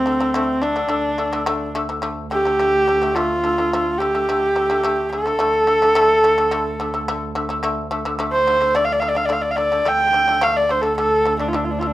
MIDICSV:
0, 0, Header, 1, 4, 480
1, 0, Start_track
1, 0, Tempo, 559180
1, 782, Time_signature, 4, 2, 24, 8
1, 10242, End_track
2, 0, Start_track
2, 0, Title_t, "Horsehead fiddle"
2, 0, Program_c, 0, 110
2, 0, Note_on_c, 0, 60, 96
2, 528, Note_on_c, 0, 62, 82
2, 541, Note_off_c, 0, 60, 0
2, 1464, Note_off_c, 0, 62, 0
2, 1988, Note_on_c, 0, 67, 94
2, 2704, Note_on_c, 0, 65, 91
2, 2717, Note_off_c, 0, 67, 0
2, 3419, Note_on_c, 0, 67, 90
2, 3432, Note_off_c, 0, 65, 0
2, 4377, Note_on_c, 0, 69, 94
2, 4390, Note_off_c, 0, 67, 0
2, 6199, Note_off_c, 0, 69, 0
2, 7143, Note_on_c, 0, 72, 90
2, 7516, Note_on_c, 0, 74, 75
2, 7529, Note_off_c, 0, 72, 0
2, 7594, Note_on_c, 0, 77, 78
2, 7607, Note_off_c, 0, 74, 0
2, 7662, Note_on_c, 0, 74, 67
2, 7675, Note_off_c, 0, 77, 0
2, 7725, Note_on_c, 0, 77, 75
2, 7738, Note_off_c, 0, 74, 0
2, 7803, Note_on_c, 0, 74, 81
2, 7815, Note_off_c, 0, 77, 0
2, 7866, Note_on_c, 0, 77, 77
2, 7879, Note_off_c, 0, 74, 0
2, 7943, Note_on_c, 0, 74, 74
2, 7956, Note_off_c, 0, 77, 0
2, 8004, Note_on_c, 0, 77, 70
2, 8017, Note_off_c, 0, 74, 0
2, 8081, Note_on_c, 0, 74, 67
2, 8094, Note_off_c, 0, 77, 0
2, 8163, Note_on_c, 0, 77, 81
2, 8176, Note_off_c, 0, 74, 0
2, 8210, Note_on_c, 0, 74, 89
2, 8223, Note_off_c, 0, 77, 0
2, 8480, Note_on_c, 0, 79, 107
2, 8493, Note_off_c, 0, 74, 0
2, 8953, Note_on_c, 0, 77, 90
2, 8966, Note_off_c, 0, 79, 0
2, 9071, Note_on_c, 0, 74, 85
2, 9084, Note_off_c, 0, 77, 0
2, 9190, Note_on_c, 0, 72, 79
2, 9203, Note_off_c, 0, 74, 0
2, 9283, Note_on_c, 0, 69, 78
2, 9296, Note_off_c, 0, 72, 0
2, 9416, Note_off_c, 0, 69, 0
2, 9421, Note_on_c, 0, 69, 87
2, 9756, Note_off_c, 0, 69, 0
2, 9783, Note_on_c, 0, 62, 63
2, 9856, Note_on_c, 0, 65, 66
2, 9869, Note_off_c, 0, 62, 0
2, 9919, Note_on_c, 0, 62, 56
2, 9932, Note_off_c, 0, 65, 0
2, 9998, Note_on_c, 0, 65, 53
2, 10010, Note_off_c, 0, 62, 0
2, 10055, Note_on_c, 0, 62, 63
2, 10067, Note_off_c, 0, 65, 0
2, 10124, Note_on_c, 0, 65, 60
2, 10137, Note_off_c, 0, 62, 0
2, 10188, Note_on_c, 0, 62, 62
2, 10201, Note_off_c, 0, 65, 0
2, 10242, Note_off_c, 0, 62, 0
2, 10242, End_track
3, 0, Start_track
3, 0, Title_t, "Shamisen"
3, 0, Program_c, 1, 106
3, 50, Note_on_c, 1, 50, 72
3, 60, Note_on_c, 1, 57, 69
3, 150, Note_off_c, 1, 50, 0
3, 155, Note_off_c, 1, 57, 0
3, 176, Note_on_c, 1, 50, 76
3, 183, Note_on_c, 1, 57, 83
3, 274, Note_off_c, 1, 50, 0
3, 278, Note_off_c, 1, 57, 0
3, 294, Note_on_c, 1, 50, 91
3, 304, Note_on_c, 1, 57, 102
3, 490, Note_off_c, 1, 50, 0
3, 495, Note_off_c, 1, 57, 0
3, 529, Note_on_c, 1, 50, 66
3, 538, Note_on_c, 1, 57, 71
3, 631, Note_off_c, 1, 50, 0
3, 636, Note_off_c, 1, 57, 0
3, 651, Note_on_c, 1, 50, 64
3, 657, Note_on_c, 1, 57, 66
3, 750, Note_off_c, 1, 50, 0
3, 756, Note_off_c, 1, 57, 0
3, 760, Note_on_c, 1, 50, 77
3, 768, Note_on_c, 1, 57, 86
3, 964, Note_off_c, 1, 50, 0
3, 968, Note_off_c, 1, 57, 0
3, 1014, Note_on_c, 1, 50, 62
3, 1018, Note_on_c, 1, 57, 77
3, 1115, Note_off_c, 1, 50, 0
3, 1117, Note_off_c, 1, 57, 0
3, 1138, Note_on_c, 1, 50, 82
3, 1143, Note_on_c, 1, 57, 80
3, 1238, Note_off_c, 1, 50, 0
3, 1240, Note_off_c, 1, 57, 0
3, 1256, Note_on_c, 1, 50, 102
3, 1261, Note_on_c, 1, 57, 127
3, 1454, Note_off_c, 1, 50, 0
3, 1456, Note_off_c, 1, 57, 0
3, 1502, Note_on_c, 1, 50, 88
3, 1506, Note_on_c, 1, 57, 96
3, 1601, Note_off_c, 1, 50, 0
3, 1603, Note_off_c, 1, 57, 0
3, 1622, Note_on_c, 1, 50, 69
3, 1627, Note_on_c, 1, 57, 79
3, 1721, Note_off_c, 1, 50, 0
3, 1724, Note_off_c, 1, 57, 0
3, 1733, Note_on_c, 1, 50, 88
3, 1741, Note_on_c, 1, 57, 105
3, 1933, Note_off_c, 1, 50, 0
3, 1937, Note_off_c, 1, 57, 0
3, 1983, Note_on_c, 1, 50, 72
3, 1989, Note_on_c, 1, 57, 82
3, 2083, Note_off_c, 1, 50, 0
3, 2086, Note_off_c, 1, 57, 0
3, 2107, Note_on_c, 1, 50, 62
3, 2117, Note_on_c, 1, 57, 70
3, 2205, Note_off_c, 1, 50, 0
3, 2210, Note_off_c, 1, 57, 0
3, 2227, Note_on_c, 1, 50, 81
3, 2235, Note_on_c, 1, 57, 81
3, 2422, Note_off_c, 1, 50, 0
3, 2426, Note_off_c, 1, 57, 0
3, 2469, Note_on_c, 1, 50, 66
3, 2478, Note_on_c, 1, 57, 71
3, 2567, Note_off_c, 1, 50, 0
3, 2571, Note_off_c, 1, 57, 0
3, 2590, Note_on_c, 1, 50, 67
3, 2598, Note_on_c, 1, 57, 75
3, 2688, Note_off_c, 1, 50, 0
3, 2692, Note_off_c, 1, 57, 0
3, 2710, Note_on_c, 1, 50, 85
3, 2715, Note_on_c, 1, 57, 87
3, 2904, Note_off_c, 1, 50, 0
3, 2907, Note_off_c, 1, 57, 0
3, 2950, Note_on_c, 1, 50, 65
3, 2958, Note_on_c, 1, 57, 68
3, 3049, Note_off_c, 1, 50, 0
3, 3053, Note_off_c, 1, 57, 0
3, 3075, Note_on_c, 1, 50, 67
3, 3081, Note_on_c, 1, 57, 65
3, 3171, Note_off_c, 1, 50, 0
3, 3174, Note_off_c, 1, 57, 0
3, 3205, Note_on_c, 1, 50, 93
3, 3212, Note_on_c, 1, 57, 94
3, 3393, Note_off_c, 1, 50, 0
3, 3396, Note_off_c, 1, 57, 0
3, 3436, Note_on_c, 1, 50, 74
3, 3447, Note_on_c, 1, 57, 71
3, 3532, Note_off_c, 1, 50, 0
3, 3538, Note_off_c, 1, 57, 0
3, 3560, Note_on_c, 1, 50, 61
3, 3564, Note_on_c, 1, 57, 65
3, 3655, Note_off_c, 1, 50, 0
3, 3657, Note_off_c, 1, 57, 0
3, 3681, Note_on_c, 1, 50, 77
3, 3687, Note_on_c, 1, 57, 87
3, 3871, Note_off_c, 1, 50, 0
3, 3875, Note_off_c, 1, 57, 0
3, 3910, Note_on_c, 1, 50, 59
3, 3916, Note_on_c, 1, 57, 80
3, 4010, Note_off_c, 1, 50, 0
3, 4013, Note_off_c, 1, 57, 0
3, 4032, Note_on_c, 1, 50, 80
3, 4041, Note_on_c, 1, 57, 70
3, 4132, Note_off_c, 1, 50, 0
3, 4134, Note_off_c, 1, 57, 0
3, 4151, Note_on_c, 1, 50, 86
3, 4159, Note_on_c, 1, 57, 112
3, 4347, Note_off_c, 1, 50, 0
3, 4351, Note_off_c, 1, 57, 0
3, 4400, Note_on_c, 1, 50, 59
3, 4406, Note_on_c, 1, 57, 64
3, 4496, Note_off_c, 1, 50, 0
3, 4498, Note_off_c, 1, 57, 0
3, 4512, Note_on_c, 1, 50, 62
3, 4523, Note_on_c, 1, 57, 65
3, 4612, Note_off_c, 1, 50, 0
3, 4618, Note_off_c, 1, 57, 0
3, 4625, Note_on_c, 1, 50, 89
3, 4636, Note_on_c, 1, 57, 92
3, 4825, Note_off_c, 1, 50, 0
3, 4830, Note_off_c, 1, 57, 0
3, 4869, Note_on_c, 1, 50, 68
3, 4878, Note_on_c, 1, 57, 65
3, 4971, Note_off_c, 1, 50, 0
3, 4975, Note_off_c, 1, 57, 0
3, 4997, Note_on_c, 1, 50, 72
3, 5003, Note_on_c, 1, 57, 75
3, 5096, Note_off_c, 1, 50, 0
3, 5097, Note_off_c, 1, 57, 0
3, 5110, Note_on_c, 1, 50, 114
3, 5117, Note_on_c, 1, 57, 114
3, 5308, Note_off_c, 1, 50, 0
3, 5311, Note_off_c, 1, 57, 0
3, 5356, Note_on_c, 1, 50, 79
3, 5361, Note_on_c, 1, 57, 90
3, 5455, Note_off_c, 1, 50, 0
3, 5457, Note_off_c, 1, 57, 0
3, 5476, Note_on_c, 1, 50, 76
3, 5480, Note_on_c, 1, 57, 79
3, 5575, Note_off_c, 1, 50, 0
3, 5577, Note_off_c, 1, 57, 0
3, 5591, Note_on_c, 1, 50, 100
3, 5597, Note_on_c, 1, 57, 97
3, 5789, Note_off_c, 1, 50, 0
3, 5790, Note_off_c, 1, 57, 0
3, 5835, Note_on_c, 1, 50, 88
3, 5843, Note_on_c, 1, 57, 85
3, 5934, Note_off_c, 1, 50, 0
3, 5938, Note_off_c, 1, 57, 0
3, 5955, Note_on_c, 1, 50, 76
3, 5962, Note_on_c, 1, 57, 77
3, 6054, Note_off_c, 1, 50, 0
3, 6058, Note_off_c, 1, 57, 0
3, 6080, Note_on_c, 1, 50, 99
3, 6083, Note_on_c, 1, 57, 108
3, 6272, Note_off_c, 1, 50, 0
3, 6274, Note_off_c, 1, 57, 0
3, 6311, Note_on_c, 1, 50, 81
3, 6316, Note_on_c, 1, 57, 77
3, 6412, Note_off_c, 1, 50, 0
3, 6414, Note_off_c, 1, 57, 0
3, 6429, Note_on_c, 1, 50, 68
3, 6439, Note_on_c, 1, 57, 87
3, 6531, Note_off_c, 1, 50, 0
3, 6536, Note_off_c, 1, 57, 0
3, 6548, Note_on_c, 1, 50, 95
3, 6554, Note_on_c, 1, 57, 109
3, 6746, Note_off_c, 1, 50, 0
3, 6749, Note_off_c, 1, 57, 0
3, 6789, Note_on_c, 1, 50, 84
3, 6794, Note_on_c, 1, 57, 84
3, 6890, Note_off_c, 1, 50, 0
3, 6893, Note_off_c, 1, 57, 0
3, 6912, Note_on_c, 1, 50, 82
3, 6918, Note_on_c, 1, 57, 86
3, 7012, Note_off_c, 1, 50, 0
3, 7015, Note_off_c, 1, 57, 0
3, 7028, Note_on_c, 1, 50, 86
3, 7037, Note_on_c, 1, 57, 99
3, 7225, Note_off_c, 1, 50, 0
3, 7230, Note_off_c, 1, 57, 0
3, 7274, Note_on_c, 1, 50, 71
3, 7278, Note_on_c, 1, 57, 72
3, 7372, Note_off_c, 1, 50, 0
3, 7375, Note_off_c, 1, 57, 0
3, 7388, Note_on_c, 1, 50, 59
3, 7396, Note_on_c, 1, 57, 73
3, 7489, Note_off_c, 1, 50, 0
3, 7493, Note_off_c, 1, 57, 0
3, 7509, Note_on_c, 1, 50, 87
3, 7516, Note_on_c, 1, 57, 88
3, 7705, Note_off_c, 1, 50, 0
3, 7709, Note_off_c, 1, 57, 0
3, 7741, Note_on_c, 1, 50, 73
3, 7746, Note_on_c, 1, 57, 69
3, 7845, Note_off_c, 1, 50, 0
3, 7848, Note_off_c, 1, 57, 0
3, 7856, Note_on_c, 1, 50, 60
3, 7866, Note_on_c, 1, 57, 74
3, 7962, Note_off_c, 1, 50, 0
3, 7967, Note_off_c, 1, 57, 0
3, 7974, Note_on_c, 1, 50, 77
3, 7981, Note_on_c, 1, 57, 85
3, 8176, Note_off_c, 1, 50, 0
3, 8180, Note_off_c, 1, 57, 0
3, 8213, Note_on_c, 1, 50, 61
3, 8222, Note_on_c, 1, 57, 66
3, 8320, Note_off_c, 1, 50, 0
3, 8325, Note_off_c, 1, 57, 0
3, 8342, Note_on_c, 1, 50, 64
3, 8348, Note_on_c, 1, 57, 62
3, 8444, Note_off_c, 1, 50, 0
3, 8447, Note_off_c, 1, 57, 0
3, 8459, Note_on_c, 1, 50, 80
3, 8465, Note_on_c, 1, 57, 96
3, 8658, Note_off_c, 1, 50, 0
3, 8661, Note_off_c, 1, 57, 0
3, 8697, Note_on_c, 1, 50, 67
3, 8706, Note_on_c, 1, 57, 71
3, 8801, Note_off_c, 1, 50, 0
3, 8805, Note_off_c, 1, 57, 0
3, 8822, Note_on_c, 1, 50, 65
3, 8832, Note_on_c, 1, 57, 71
3, 8923, Note_off_c, 1, 50, 0
3, 8928, Note_off_c, 1, 57, 0
3, 8939, Note_on_c, 1, 50, 94
3, 8944, Note_on_c, 1, 57, 102
3, 9136, Note_off_c, 1, 50, 0
3, 9139, Note_off_c, 1, 57, 0
3, 9180, Note_on_c, 1, 50, 66
3, 9188, Note_on_c, 1, 57, 69
3, 9280, Note_off_c, 1, 50, 0
3, 9284, Note_off_c, 1, 57, 0
3, 9295, Note_on_c, 1, 50, 63
3, 9302, Note_on_c, 1, 57, 62
3, 9398, Note_off_c, 1, 50, 0
3, 9401, Note_off_c, 1, 57, 0
3, 9425, Note_on_c, 1, 50, 85
3, 9431, Note_on_c, 1, 57, 78
3, 9618, Note_off_c, 1, 50, 0
3, 9619, Note_off_c, 1, 57, 0
3, 9661, Note_on_c, 1, 50, 70
3, 9669, Note_on_c, 1, 57, 80
3, 9759, Note_off_c, 1, 50, 0
3, 9763, Note_off_c, 1, 57, 0
3, 9781, Note_on_c, 1, 50, 65
3, 9789, Note_on_c, 1, 57, 72
3, 9879, Note_off_c, 1, 50, 0
3, 9882, Note_off_c, 1, 57, 0
3, 9898, Note_on_c, 1, 50, 74
3, 9909, Note_on_c, 1, 57, 88
3, 10092, Note_off_c, 1, 50, 0
3, 10097, Note_off_c, 1, 57, 0
3, 10139, Note_on_c, 1, 50, 63
3, 10150, Note_on_c, 1, 57, 70
3, 10236, Note_off_c, 1, 50, 0
3, 10242, Note_off_c, 1, 57, 0
3, 10242, End_track
4, 0, Start_track
4, 0, Title_t, "Double bass"
4, 0, Program_c, 2, 43
4, 0, Note_on_c, 2, 38, 69
4, 781, Note_off_c, 2, 38, 0
4, 786, Note_on_c, 2, 38, 73
4, 4633, Note_off_c, 2, 38, 0
4, 4638, Note_on_c, 2, 38, 72
4, 8470, Note_off_c, 2, 38, 0
4, 8475, Note_on_c, 2, 38, 78
4, 10242, Note_off_c, 2, 38, 0
4, 10242, End_track
0, 0, End_of_file